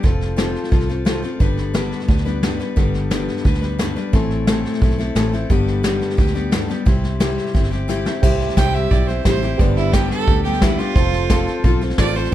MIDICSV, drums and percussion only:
0, 0, Header, 1, 2, 480
1, 0, Start_track
1, 0, Key_signature, 0, "major"
1, 0, Tempo, 341297
1, 52, Time_signature, 4, 2, 24, 8
1, 17361, End_track
2, 0, Start_track
2, 0, Title_t, "Drums"
2, 54, Note_on_c, 9, 36, 101
2, 55, Note_on_c, 9, 38, 33
2, 195, Note_off_c, 9, 36, 0
2, 196, Note_off_c, 9, 38, 0
2, 296, Note_on_c, 9, 38, 30
2, 436, Note_off_c, 9, 38, 0
2, 534, Note_on_c, 9, 38, 102
2, 534, Note_on_c, 9, 44, 78
2, 675, Note_off_c, 9, 38, 0
2, 675, Note_off_c, 9, 44, 0
2, 777, Note_on_c, 9, 38, 31
2, 895, Note_off_c, 9, 38, 0
2, 895, Note_on_c, 9, 38, 30
2, 1011, Note_off_c, 9, 38, 0
2, 1011, Note_on_c, 9, 38, 29
2, 1012, Note_on_c, 9, 36, 94
2, 1133, Note_off_c, 9, 38, 0
2, 1133, Note_on_c, 9, 38, 30
2, 1152, Note_off_c, 9, 36, 0
2, 1253, Note_off_c, 9, 38, 0
2, 1253, Note_on_c, 9, 38, 29
2, 1394, Note_off_c, 9, 38, 0
2, 1493, Note_on_c, 9, 38, 97
2, 1493, Note_on_c, 9, 44, 71
2, 1634, Note_off_c, 9, 38, 0
2, 1634, Note_off_c, 9, 44, 0
2, 1735, Note_on_c, 9, 38, 29
2, 1875, Note_off_c, 9, 38, 0
2, 1973, Note_on_c, 9, 36, 101
2, 1973, Note_on_c, 9, 38, 31
2, 2113, Note_off_c, 9, 36, 0
2, 2114, Note_off_c, 9, 38, 0
2, 2213, Note_on_c, 9, 38, 30
2, 2354, Note_off_c, 9, 38, 0
2, 2453, Note_on_c, 9, 38, 96
2, 2453, Note_on_c, 9, 44, 73
2, 2594, Note_off_c, 9, 38, 0
2, 2594, Note_off_c, 9, 44, 0
2, 2692, Note_on_c, 9, 38, 29
2, 2812, Note_off_c, 9, 38, 0
2, 2812, Note_on_c, 9, 38, 29
2, 2931, Note_off_c, 9, 38, 0
2, 2931, Note_on_c, 9, 38, 31
2, 2933, Note_on_c, 9, 36, 97
2, 3055, Note_off_c, 9, 38, 0
2, 3055, Note_on_c, 9, 38, 29
2, 3074, Note_off_c, 9, 36, 0
2, 3175, Note_off_c, 9, 38, 0
2, 3175, Note_on_c, 9, 38, 28
2, 3315, Note_off_c, 9, 38, 0
2, 3415, Note_on_c, 9, 38, 95
2, 3415, Note_on_c, 9, 44, 78
2, 3556, Note_off_c, 9, 38, 0
2, 3556, Note_off_c, 9, 44, 0
2, 3652, Note_on_c, 9, 38, 30
2, 3792, Note_off_c, 9, 38, 0
2, 3892, Note_on_c, 9, 38, 33
2, 3894, Note_on_c, 9, 36, 100
2, 4033, Note_off_c, 9, 38, 0
2, 4035, Note_off_c, 9, 36, 0
2, 4133, Note_on_c, 9, 38, 31
2, 4274, Note_off_c, 9, 38, 0
2, 4375, Note_on_c, 9, 38, 96
2, 4375, Note_on_c, 9, 44, 78
2, 4515, Note_off_c, 9, 38, 0
2, 4515, Note_off_c, 9, 44, 0
2, 4615, Note_on_c, 9, 38, 30
2, 4735, Note_off_c, 9, 38, 0
2, 4735, Note_on_c, 9, 38, 30
2, 4854, Note_off_c, 9, 38, 0
2, 4854, Note_on_c, 9, 36, 95
2, 4854, Note_on_c, 9, 38, 31
2, 4976, Note_off_c, 9, 38, 0
2, 4976, Note_on_c, 9, 38, 31
2, 4995, Note_off_c, 9, 36, 0
2, 5096, Note_off_c, 9, 38, 0
2, 5096, Note_on_c, 9, 38, 27
2, 5237, Note_off_c, 9, 38, 0
2, 5333, Note_on_c, 9, 38, 96
2, 5333, Note_on_c, 9, 44, 73
2, 5473, Note_off_c, 9, 38, 0
2, 5473, Note_off_c, 9, 44, 0
2, 5573, Note_on_c, 9, 38, 32
2, 5714, Note_off_c, 9, 38, 0
2, 5811, Note_on_c, 9, 38, 31
2, 5813, Note_on_c, 9, 36, 102
2, 5952, Note_off_c, 9, 38, 0
2, 5954, Note_off_c, 9, 36, 0
2, 6053, Note_on_c, 9, 38, 33
2, 6193, Note_off_c, 9, 38, 0
2, 6289, Note_on_c, 9, 38, 101
2, 6289, Note_on_c, 9, 44, 82
2, 6430, Note_off_c, 9, 38, 0
2, 6430, Note_off_c, 9, 44, 0
2, 6536, Note_on_c, 9, 38, 31
2, 6658, Note_off_c, 9, 38, 0
2, 6658, Note_on_c, 9, 38, 30
2, 6776, Note_on_c, 9, 36, 94
2, 6778, Note_off_c, 9, 38, 0
2, 6778, Note_on_c, 9, 38, 29
2, 6898, Note_off_c, 9, 38, 0
2, 6898, Note_on_c, 9, 38, 31
2, 6916, Note_off_c, 9, 36, 0
2, 7020, Note_off_c, 9, 38, 0
2, 7020, Note_on_c, 9, 38, 30
2, 7161, Note_off_c, 9, 38, 0
2, 7256, Note_on_c, 9, 38, 98
2, 7256, Note_on_c, 9, 44, 78
2, 7397, Note_off_c, 9, 38, 0
2, 7397, Note_off_c, 9, 44, 0
2, 7498, Note_on_c, 9, 38, 31
2, 7639, Note_off_c, 9, 38, 0
2, 7734, Note_on_c, 9, 38, 33
2, 7735, Note_on_c, 9, 36, 98
2, 7875, Note_off_c, 9, 36, 0
2, 7875, Note_off_c, 9, 38, 0
2, 7976, Note_on_c, 9, 38, 31
2, 8116, Note_off_c, 9, 38, 0
2, 8213, Note_on_c, 9, 38, 102
2, 8213, Note_on_c, 9, 44, 78
2, 8354, Note_off_c, 9, 38, 0
2, 8354, Note_off_c, 9, 44, 0
2, 8454, Note_on_c, 9, 38, 31
2, 8578, Note_off_c, 9, 38, 0
2, 8578, Note_on_c, 9, 38, 31
2, 8693, Note_off_c, 9, 38, 0
2, 8693, Note_on_c, 9, 38, 31
2, 8695, Note_on_c, 9, 36, 97
2, 8815, Note_off_c, 9, 38, 0
2, 8815, Note_on_c, 9, 38, 31
2, 8836, Note_off_c, 9, 36, 0
2, 8936, Note_off_c, 9, 38, 0
2, 8936, Note_on_c, 9, 38, 29
2, 9076, Note_off_c, 9, 38, 0
2, 9172, Note_on_c, 9, 38, 97
2, 9172, Note_on_c, 9, 44, 76
2, 9312, Note_off_c, 9, 38, 0
2, 9312, Note_off_c, 9, 44, 0
2, 9413, Note_on_c, 9, 38, 31
2, 9553, Note_off_c, 9, 38, 0
2, 9652, Note_on_c, 9, 38, 32
2, 9654, Note_on_c, 9, 36, 109
2, 9793, Note_off_c, 9, 38, 0
2, 9795, Note_off_c, 9, 36, 0
2, 9894, Note_on_c, 9, 38, 32
2, 10035, Note_off_c, 9, 38, 0
2, 10131, Note_on_c, 9, 38, 107
2, 10131, Note_on_c, 9, 44, 79
2, 10271, Note_off_c, 9, 38, 0
2, 10271, Note_off_c, 9, 44, 0
2, 10375, Note_on_c, 9, 38, 29
2, 10496, Note_off_c, 9, 38, 0
2, 10496, Note_on_c, 9, 38, 30
2, 10611, Note_off_c, 9, 38, 0
2, 10611, Note_on_c, 9, 38, 31
2, 10614, Note_on_c, 9, 36, 97
2, 10735, Note_off_c, 9, 38, 0
2, 10735, Note_on_c, 9, 38, 30
2, 10755, Note_off_c, 9, 36, 0
2, 10856, Note_off_c, 9, 38, 0
2, 10856, Note_on_c, 9, 38, 29
2, 10996, Note_off_c, 9, 38, 0
2, 11095, Note_on_c, 9, 38, 50
2, 11095, Note_on_c, 9, 44, 73
2, 11235, Note_off_c, 9, 38, 0
2, 11235, Note_off_c, 9, 44, 0
2, 11337, Note_on_c, 9, 38, 74
2, 11477, Note_off_c, 9, 38, 0
2, 11575, Note_on_c, 9, 36, 111
2, 11576, Note_on_c, 9, 38, 34
2, 11576, Note_on_c, 9, 49, 97
2, 11715, Note_off_c, 9, 36, 0
2, 11717, Note_off_c, 9, 38, 0
2, 11717, Note_off_c, 9, 49, 0
2, 11817, Note_on_c, 9, 38, 32
2, 11939, Note_off_c, 9, 38, 0
2, 11939, Note_on_c, 9, 38, 31
2, 12053, Note_on_c, 9, 36, 82
2, 12054, Note_off_c, 9, 38, 0
2, 12054, Note_on_c, 9, 38, 108
2, 12054, Note_on_c, 9, 44, 80
2, 12194, Note_off_c, 9, 36, 0
2, 12195, Note_off_c, 9, 38, 0
2, 12195, Note_off_c, 9, 44, 0
2, 12292, Note_on_c, 9, 38, 32
2, 12433, Note_off_c, 9, 38, 0
2, 12531, Note_on_c, 9, 38, 33
2, 12533, Note_on_c, 9, 36, 99
2, 12672, Note_off_c, 9, 38, 0
2, 12673, Note_off_c, 9, 36, 0
2, 12776, Note_on_c, 9, 38, 30
2, 12917, Note_off_c, 9, 38, 0
2, 13012, Note_on_c, 9, 38, 104
2, 13012, Note_on_c, 9, 44, 75
2, 13013, Note_on_c, 9, 36, 82
2, 13152, Note_off_c, 9, 38, 0
2, 13152, Note_off_c, 9, 44, 0
2, 13154, Note_off_c, 9, 36, 0
2, 13252, Note_on_c, 9, 38, 31
2, 13393, Note_off_c, 9, 38, 0
2, 13493, Note_on_c, 9, 36, 106
2, 13493, Note_on_c, 9, 38, 35
2, 13633, Note_off_c, 9, 38, 0
2, 13634, Note_off_c, 9, 36, 0
2, 13735, Note_on_c, 9, 38, 33
2, 13876, Note_off_c, 9, 38, 0
2, 13970, Note_on_c, 9, 38, 106
2, 13970, Note_on_c, 9, 44, 83
2, 13972, Note_on_c, 9, 36, 83
2, 14111, Note_off_c, 9, 38, 0
2, 14111, Note_off_c, 9, 44, 0
2, 14113, Note_off_c, 9, 36, 0
2, 14213, Note_on_c, 9, 38, 32
2, 14354, Note_off_c, 9, 38, 0
2, 14451, Note_on_c, 9, 38, 30
2, 14452, Note_on_c, 9, 36, 100
2, 14592, Note_off_c, 9, 36, 0
2, 14592, Note_off_c, 9, 38, 0
2, 14694, Note_on_c, 9, 38, 33
2, 14812, Note_off_c, 9, 38, 0
2, 14812, Note_on_c, 9, 38, 31
2, 14929, Note_off_c, 9, 38, 0
2, 14929, Note_on_c, 9, 38, 102
2, 14929, Note_on_c, 9, 44, 81
2, 14931, Note_on_c, 9, 36, 82
2, 15070, Note_off_c, 9, 38, 0
2, 15070, Note_off_c, 9, 44, 0
2, 15072, Note_off_c, 9, 36, 0
2, 15170, Note_on_c, 9, 38, 35
2, 15311, Note_off_c, 9, 38, 0
2, 15406, Note_on_c, 9, 38, 35
2, 15411, Note_on_c, 9, 36, 107
2, 15547, Note_off_c, 9, 38, 0
2, 15551, Note_off_c, 9, 36, 0
2, 15650, Note_on_c, 9, 38, 33
2, 15790, Note_off_c, 9, 38, 0
2, 15889, Note_on_c, 9, 38, 113
2, 15889, Note_on_c, 9, 44, 84
2, 15891, Note_on_c, 9, 36, 85
2, 16029, Note_off_c, 9, 38, 0
2, 16029, Note_off_c, 9, 44, 0
2, 16032, Note_off_c, 9, 36, 0
2, 16129, Note_on_c, 9, 38, 34
2, 16270, Note_off_c, 9, 38, 0
2, 16370, Note_on_c, 9, 38, 35
2, 16372, Note_on_c, 9, 36, 98
2, 16510, Note_off_c, 9, 38, 0
2, 16513, Note_off_c, 9, 36, 0
2, 16612, Note_on_c, 9, 38, 31
2, 16733, Note_off_c, 9, 38, 0
2, 16733, Note_on_c, 9, 38, 31
2, 16850, Note_off_c, 9, 38, 0
2, 16850, Note_on_c, 9, 38, 109
2, 16850, Note_on_c, 9, 44, 84
2, 16853, Note_on_c, 9, 36, 84
2, 16990, Note_off_c, 9, 38, 0
2, 16990, Note_off_c, 9, 44, 0
2, 16994, Note_off_c, 9, 36, 0
2, 17095, Note_on_c, 9, 38, 34
2, 17216, Note_off_c, 9, 38, 0
2, 17216, Note_on_c, 9, 38, 31
2, 17356, Note_off_c, 9, 38, 0
2, 17361, End_track
0, 0, End_of_file